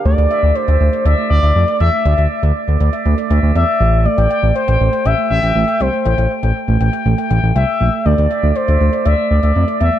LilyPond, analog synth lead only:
\new Staff \with { instrumentName = "Analog synth lead" } { \time 4/4 \key a \phrygian \tempo 4 = 120 d''4 c''4 d''8 d''4 e''8~ | e''8 r2 r8 e''4 | d''4 c''4 e''8 e''4 c''8~ | c''8 r2 r8 e''4 |
d''4 c''4 d''8 d''4 e''8 | }